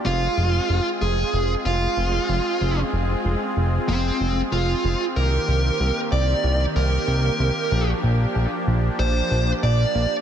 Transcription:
<<
  \new Staff \with { instrumentName = "Lead electric guitar" } { \time 4/4 \key f \dorian \tempo 4 = 94 f'4. aes'4 f'4.~ | f'8 r4. c'4 f'4 | bes'4. d''4 bes'4.~ | bes'8 r4. c''4 d''4 | }
  \new Staff \with { instrumentName = "Supersaw synth" } { \time 4/4 \key f \dorian << { <aes c' aes'>1~ | <aes c' aes'>1 | <bes g'>1~ | <bes g'>1 | } \\ { f'1~ | f'1 | ees1 | <f d'>1 | } >> }
  \new Staff \with { instrumentName = "Analog synth bass" } { \clef bass \time 4/4 \key f \dorian f,,8 f,,8 f,,8 f,,8 f,,8 f,,8 f,,8 f,,8 | f,,8 f,,8 f,,8 f,,8 f,,8 f,,8 f,,8 f,,8 | c,8 c,8 c,8 c,8 c,8 c,8 c,8 c,8 | bes,,8 bes,,8 bes,,8 bes,,8 bes,,8 bes,,8 bes,,8 bes,,8 | }
>>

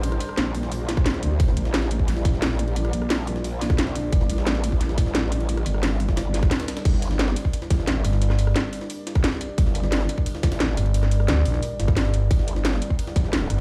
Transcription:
<<
  \new Staff \with { instrumentName = "Ambient pad" } { \time 4/4 \key g \minor \tempo 4 = 176 << { c''1 | d''1~ | d''1~ | d''1~ |
d''1 | d''1~ | d''1~ | d''1~ |
d''1 | fis''1 | } \\ { <g d' bes'>1~ | <g d' bes'>1~ | <g d' bes'>1~ | <g d' bes'>1~ |
<g d' bes'>1 | <g d' bes'>1~ | <g d' bes'>1~ | <g d' bes'>1~ |
<g d' bes'>1~ | <g d' bes'>1 | } >> }
  \new Staff \with { instrumentName = "Wobble bass" } { \clef bass \time 4/4 \key g \minor a,,8 r8 bes,,2~ bes,,8 d,8 | g,,8 a,,2.~ a,,8~ | a,,8 bes,,2.~ bes,,8 | g,,8 a,,2.~ a,,8~ |
a,,8 g,,4 g,,8 g,,4 r4 | g,,4. r4 a,,4 r8 | r1 | g,,4. r4 a,,4 r8 |
r1 | g,,4. r4 a,,4 r8 | }
  \new Staff \with { instrumentName = "FM bass" } { \clef bass \time 4/4 \key g \minor r1 | r1 | r1 | r1 |
r1 | r2. r8 g,,8~ | g,,4 r2. | r2. r8 g,,8~ |
g,,4 d,8 bes,,8 r8 g,,4. | r2. r8 g,,8 | }
  \new DrumStaff \with { instrumentName = "Drums" } \drummode { \time 4/4 <hh cymr>16 <cymr ss>16 <hh cymr>16 ss16 <hh cymr sn>8 <hho cymr>16 sn16 <hh hho>8 <hh cymr sn>16 <bd ss sn>16 <hh cymr sn>16 sn16 <hh cymr>8 | <hh bd cymr>16 sn16 <hh cymr>16 sn16 <hh cymr sn>16 sn16 <hh cymr>16 bd16 <hh cymr sn>16 sn16 <hh bd cymr sn>16 sn16 <hh cymr sn>8 <hh cymr ss>16 cymr16 | <hh cymr>16 <cymr ss>16 <hh cymr>16 ss16 <hh cymr sn>8 <hho cymr>16 sn16 <hh hho>8 <hh cymr sn>16 <bd ss sn>16 <hh cymr sn>16 sn16 <hh cymr>8 | <hh bd cymr>16 sn16 <hh cymr>16 sn16 <hh cymr sn>16 sn16 <hh cymr>16 bd16 <hh cymr sn>16 sn16 <hh bd cymr sn>16 sn16 <hh cymr sn>8 <hh cymr ss>16 cymr16 |
<hh cymr>16 <cymr ss>16 <hh cymr>16 ss16 <hh cymr sn>8 <hho cymr>16 <bd sn>16 <hh cymr sn>8 <hh cymr sn>16 <bd ss sn>16 <hh cymr sn>16 <cymr sn>16 <hh cymr sn>16 <cymr sn>16 | <cymc hh bd cymr>16 sn16 <hh cymr>16 sn16 <hh cymr sn>16 sn16 <hh cymr>16 bd16 <hh cymr>16 sn16 <hh bd cymr sn>16 sn16 <hh cymr sn>8 <hh cymr ss>16 sn16 | <hh cymr sn>16 <ss sn>16 <hh cymr>16 ss16 <hh cymr sn>8 <hho cymr>16 sn16 <hh hho>8 <hh cymr sn>16 <bd ss sn>16 <hh cymr sn>16 sn16 <hh cymr>8 | <hh bd cymr>16 sn16 <hh cymr>16 sn16 <hh cymr sn>16 sn16 <hh cymr>16 bd16 <hh cymr>16 sn16 <hh bd cymr sn>16 <cymr sn>16 <hh cymr sn>8 <hh cymr ss>16 cymr16 |
<hh cymr>16 <cymr ss sn>16 <hh cymr>16 ss16 <hh cymr sn>8 <hho cymr>16 sn16 <hh hho>8 <hh cymr sn>16 <bd ss sn>16 <hh cymr sn>16 sn16 <hh cymr>8 | <hh bd cymr>16 sn16 <hh cymr>16 sn16 <hh cymr sn>16 sn16 <hh cymr>16 bd16 <hh cymr>16 sn16 <hh bd cymr sn>16 sn16 <hh cymr sn>8 <hh cymr ss>8 | }
>>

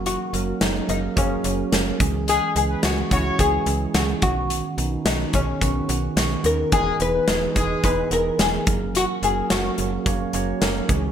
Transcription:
<<
  \new Staff \with { instrumentName = "Oud" } { \time 4/4 \key fis \mixolydian \tempo 4 = 108 fis'4 dis'8 dis'8 cis'4. r8 | gis'8 gis'8 fis'8 fis'8 gis'4 fis'8 fis'8~ | fis'4 dis'8 cis'2 ais'8 | gis'8 b'4. b'8 ais'8 gis'4 |
fis'8 gis'8 fis'2~ fis'8 r8 | }
  \new Staff \with { instrumentName = "Horn section" } { \time 4/4 \key fis \mixolydian r1 | <gis gis'>8 r16 <b b'>16 <cis' cis''>16 r16 <cis' cis''>4 r4. | r1 | <gis gis'>8 r16 <b b'>16 <gis gis'>16 r16 <gis gis'>4 r4. |
r1 | }
  \new Staff \with { instrumentName = "Tine electric piano" } { \time 4/4 \key fis \mixolydian <fis ais cis' ais'>8 <fis ais cis' ais'>8 <fis ais cis' gis'>8 <fis ais cis' ais'>8 <fis ais cis' gis'>8 <fis ais cis' fis'>8 <fis ais cis' ais'>8 <e gis cis' gis'>8~ | <e gis cis' gis'>8 <e gis cis' gis'>8 <e gis cis' b'>8 <e gis cis' e'>8 <e gis cis' gis'>8 <e gis cis' gis'>8 <e gis cis' gis'>8 <dis b cis' fis'>8~ | <dis b cis' fis'>8 <dis b cis' dis'>8 <dis b cis' fis'>8 <dis b cis' gis'>8 <dis b cis' fis'>8 <dis b cis' fis'>8 <dis b cis' fis'>8 <dis b cis' dis'>8 | <e b dis' gis'>8 <e b dis' gis'>8 <e b dis' fis'>8 <e b dis' gis'>8 <e b dis' gis'>8 <e b dis' gis'>8 <e b dis' ais'>8 <fis ais cis' ais'>8~ |
<fis ais cis' ais'>8 <fis ais cis' ais'>8 <fis ais cis' ais'>8 <fis ais cis' gis'>8 <fis ais cis' cis''>8 <fis ais cis' cis''>8 <fis ais cis' ais'>8 <e gis cis' gis'>8 | }
  \new Staff \with { instrumentName = "FM bass" } { \clef bass \time 4/4 \key fis \mixolydian fis,,8 fis,,8 fis,,8 fis,,8 fis,,8 fis,,8 fis,,8 cis,8~ | cis,8 cis,8 cis,8 cis,8 cis,8 cis,8 cis,8 b,,8~ | b,,8 b,,8 b,,8 b,,8 b,,8 b,,8 b,,8 dis,8 | e,,8 e,,8 e,,8 e,,8 e,,8 e,,8 e,,8 fis,,8~ |
fis,,8 fis,,8 fis,,8 fis,,8 fis,,8 fis,,8 fis,,8 cis,8 | }
  \new DrumStaff \with { instrumentName = "Drums" } \drummode { \time 4/4 hh8 hh8 <hh sn>8 hh8 <hh bd>8 hh8 <hh sn>8 <hh bd>8 | hh8 hh8 <hh sn>8 <hh bd>8 <hh bd>8 hh8 <hh sn>8 <hh bd>8 | hh8 hh8 <hh sn>8 <hh bd>8 <hh bd>8 hh8 <hh sn>8 hh8 | <hh bd>8 hh8 <hh sn>8 <hh bd>8 <hh bd>8 hh8 <hh sn>8 <hh bd>8 |
hh8 hh8 <hh sn>8 hh8 <hh bd>8 hh8 <hh sn>8 <hh bd>8 | }
>>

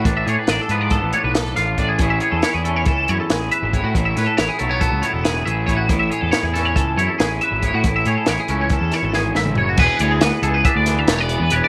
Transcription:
<<
  \new Staff \with { instrumentName = "Clean electric guitar" } { \time 9/8 \key a \major \tempo 4. = 92 r16 e''16 cis''16 b'16 d''16 a'16 b'16 d''16 a'8 cis''16 b'16 a'8 f''8 d''16 gis'16 | r16 e''16 cis''16 a'16 cis''16 gis'16 a'16 cis''16 a'8 cis''16 a'16 gis'8 e''8 cis''16 fis'16 | r16 e''16 cis''16 a'16 cis''16 gis'16 a'16 cis''16 a'8 cis''16 a'16 gis'8 e''8 cis''16 fis'16 | r16 e''16 cis''16 a'16 cis''16 gis'16 a'16 cis''16 a'8 cis''16 a'16 gis'8 e''8 cis''16 fis'16 |
r16 e''16 cis''16 a'16 cis''16 gis'16 a'16 cis''16 a'8 cis''16 a'16 gis'8 e''8 cis''16 fis'16 | b'8 cis''16 gis'16 b'8 a'16 b'16 e''16 d''8 e''16 cis''16 d''8 b'16 cis''16 d''16 | }
  \new Staff \with { instrumentName = "Clean electric guitar" } { \time 9/8 \key a \major << { d'8 gis'8 d'8 b4 d'4 f'8 d'8 | <e cis' e' gis'>8 gis'8 e'8 cis'4 e'4 b'8 e'8 | e'8 b'8 e'8 a16 b8. e'4 gis'8 e'8 | e'8 gis'8 e'8 cis'4 e'4 b'8 e'8 |
e'8 gis'8 e'8 cis'4 e'2 | gis'4 b8 gis'8 d'4 a16 b8. b'8 | } \\ { a,4. f4 a,4. a,8 | a,4. e4 e,4. a,8 | a,4. fis4 a,4. a,8 | a,4. e4 e,4. a,8 |
a,4. e4 e,8 a,8 gis,8 fis,8 | e,8 e2 e4 e8 e,8 | } >> }
  \new Staff \with { instrumentName = "Picked electric bass" } { \clef bass \time 9/8 \key a \major a,,8 a,16 r16 a,,16 r16 gis,8. a,,16 r16 b,,8. a,,8 a,,8 | a,,8 r16 e,16 r16 e,8. cis,8 fis,16 r16 a,,8 r16 gis,,8 a,16 | a,,8 a,16 r16 a,,16 r16 b,,8. cis,16 r16 e,,8. a,,8 a,,8 | a,,8 r16 e,16 r16 e,8. cis,8 fis,16 r16 a,,8 r16 gis,,8 a,16 |
a,,8 a,16 r16 a,,16 r16 cis,8. e,16 r16 gis,,8. a,,8 fis,,8 | e,,16 r16 d,8 d,16 r16 cis,8 r16 d,8. e,,8. e,16 e,,16 r16 | }
  \new DrumStaff \with { instrumentName = "Drums" } \drummode { \time 9/8 <hh bd>8 hh8 <hh sn>8 hh8 <hh bd>8 hh8 <hh sn>8 <hh sn>8 <hh bd>8 | <hh bd>8 hh8 <hh sn>8 hh8 <hh bd>8 hh8 <hh sn>8 hh8 <hh bd>8 | <hh bd>8 <hh sn>8 <hh sn>8 hh8 <hh bd>8 hh8 <hh sn>8 hh8 <hh bd>8 | <hh bd>8 hh8 <hh sn>8 <hh sn>8 <hh bd>8 hh8 <hh sn>8 hh8 <hh bd>8 |
<hh bd>8 hh8 <hh sn>8 hh8 <hh bd>8 <hh sn>8 sn8 sn16 toml16 tomfh8 | <cymc bd>8 hh8 <hh sn>8 hh8 <hh bd>8 <hh sn>8 <hh sn>8 hh8 hh8 | }
>>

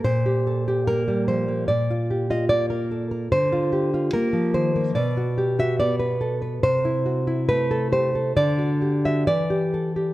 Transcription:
\new Staff \with { instrumentName = "Nylon-string guitar" } { \time 2/4 \key g \minor \tempo 4 = 72 << { c''4 bes'8 c''8 | d''8. ees''16 d''4 | c''4 bes'8 c''8 | \key a \dorian d''8. e''16 d''4 |
c''4 b'8 c''8 | d''8. e''16 d''4 | } \\ { bes,16 g'16 a'16 g'16 bes16 g16 f16 bes16 | bes,16 f'16 g'16 f'16 bes16 bes'16 a'16 bes'16 | d16 f'16 g'16 f'16 bes16 f16 ees16 bes16 | b,16 fis'16 g'16 fis'16 b16 b'16 a'16 b'16 |
c16 e'16 fis'16 e'16 a16 a'16 g'16 a'16 | d16 fis'16 g'16 fis'16 e16 g'16 a'16 g'16 | } >> }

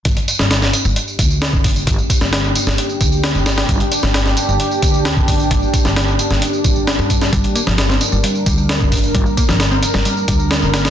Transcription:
<<
  \new Staff \with { instrumentName = "Ambient pad" } { \time 4/4 \key g \minor \tempo 4 = 132 << { g'1~ | g'1~ | g'1~ | g'1 |
bes'1~ | bes'1 | } \\ { <bes d'>1~ | <bes d'>1~ | <bes d'>1~ | <bes d'>1~ |
<bes d'>1~ | <bes d'>1 | } >> }
  \new Staff \with { instrumentName = "Picked electric bass" } { \clef bass \time 4/4 \key g \minor r1 | r1 | r1 | r1 |
g8 bes16 f16 r16 c'16 r16 g16 g8 g4 r8 | g8 bes16 f16 r16 c'16 r16 g16 g8 g4 r8 | }
  \new Staff \with { instrumentName = "Upright bass" } { \clef bass \time 4/4 \key g \minor g,,16 r8 g,,8. r16 g,,16 r8 d,8. g,,8. | g,,16 r8 g,,8. r16 g,,16 r8 d,8. g,,8. | g,,16 r8 g,,8. r16 g,,16 r8 d,8. g,,8. | g,,16 r8 g,,8. r16 g,,16 r8 g,,8. g,8. |
g,,16 r8 g,,8. r16 g,,16 r8 d,8. g,,8. | g,,16 r8 g,,8. r16 g,,16 r8 d,8. g,,8. | }
  \new DrumStaff \with { instrumentName = "Drums" } \drummode { \time 4/4 <hh bd tamb>16 <hh tamb>16 <hh tamb>16 <sn tamb>16 <hh sn tamb>16 <sn tamb>16 <hh tamb>16 tamb16 <hh tamb>16 tamb16 <hh bd tamb>16 tamb16 <hh sn tamb>16 <bd tamb>16 <hho bd tamb>16 tamb16 | <hh bd tamb>16 tamb16 <hh bd tamb>16 <sn tamb>16 <hh sn tamb>16 tamb16 <hh tamb>16 <sn tamb>16 <hh tamb>16 tamb16 <hh bd tamb>16 tamb16 <hh sn tamb>16 tamb16 <hh sn tamb>16 <hh sn tamb>16 | <hh bd tamb>16 <hh tamb>16 <hh tamb>16 sn16 <hh sn tamb>16 <sn tamb>16 <hh tamb>16 tamb16 <hh tamb>16 tamb16 <hh bd tamb>16 tamb16 <hh sn tamb>16 <bd tamb>16 <hho bd tamb>16 tamb16 | <hh bd tamb>16 tamb16 <hh bd tamb>16 <sn tamb>16 <hh sn tamb>16 tamb16 <hh tamb>16 <sn tamb>16 <hh tamb>16 tamb16 <hh bd tamb>16 tamb16 <hh sn tamb>16 tamb16 <hh bd tamb>16 <sn tamb>16 |
<hh bd tamb>16 <hh tamb>16 <hh tamb>16 <sn tamb>16 <hh sn tamb>16 <sn tamb>16 <hh tamb>16 tamb16 <hh tamb>16 tamb16 <hh bd tamb>16 tamb16 <hh sn tamb>16 <bd tamb>16 <hho bd tamb>16 tamb16 | <hh bd tamb>16 tamb16 <hh bd tamb>16 <sn tamb>16 <hh sn tamb>16 tamb16 <hh tamb>16 <sn tamb>16 <hh tamb>16 tamb16 <hh bd tamb>16 tamb16 <hh sn tamb>16 tamb16 <hh sn tamb>16 <hh sn tamb>16 | }
>>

